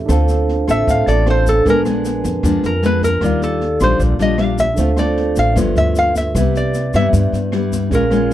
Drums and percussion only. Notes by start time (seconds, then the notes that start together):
0.09 kick, cross-stick, snare, shaker
0.29 snare, shaker
0.49 snare
0.68 kick, cross-stick, snare, shaker
0.87 kick, snare, shaker
1.07 snare, shaker
1.26 cross-stick, snare
1.46 kick, snare, shaker
1.65 kick, snare, shaker
1.85 cross-stick, snare, shaker
2.05 snare, shaker
2.24 kick, snare, shaker
2.43 kick, cross-stick, snare, shaker
2.63 snare, shaker
2.83 snare, shaker
3.02 kick, snare, shaker
3.21 kick, cross-stick, snare, shaker
3.41 snare, shaker
3.61 snare
3.80 kick, cross-stick, snare, shaker
3.99 kick, snare, shaker
4.19 snare, shaker
4.38 cross-stick, snare
4.58 kick, snare, shaker
4.77 kick, snare, shaker
4.97 cross-stick, snare, shaker
5.17 snare
5.36 kick, snare, shaker
5.56 kick, cross-stick, snare, shaker
5.76 snare, shaker
5.96 snare, shaker
6.15 kick, snare, shaker
6.35 kick, cross-stick, snare, shaker
6.55 snare, shaker
6.74 snare, shaker
6.94 kick, cross-stick, snare, shaker
7.13 kick, snare, shaker
7.33 snare, shaker
7.52 cross-stick, snare
7.72 kick, snare, shaker
7.91 kick, snare, shaker
8.11 cross-stick, snare, shaker
8.30 snare